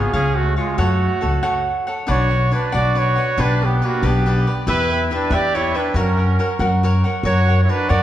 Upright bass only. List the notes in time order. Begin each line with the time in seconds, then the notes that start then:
0.14 C#2
0.78 F#2
1.23 C#2
2.09 B1
2.74 B1
3.38 B1
4.03 B1
4.67 E2
5.30 E2
5.94 F#2
6.59 F#2
7.23 F#2
7.90 F#2